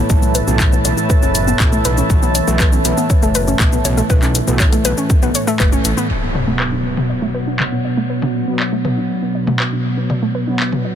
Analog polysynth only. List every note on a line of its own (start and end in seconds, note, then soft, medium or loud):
0.00 0.44 A2 medium
0.00 0.44 E3 medium
0.00 0.44 A3 loud
0.47 2.44 A2 medium
0.47 2.44 E3 medium
0.47 2.44 A3 loud
2.47 4.44 A2 medium
2.47 4.44 E3 medium
2.47 4.44 A3 loud
4.47 6.08 A2 medium
4.47 6.08 E3 medium
4.47 6.08 A3 loud
6.47 8.44 B2 medium
6.47 8.44 F#3 medium
6.47 8.44 B3 medium
8.48 10.44 B2 medium
8.48 10.44 F#3 medium
8.48 10.44 B3 medium
10.47 10.95 B2 medium
10.47 10.95 F#3 medium
10.47 10.95 B3 medium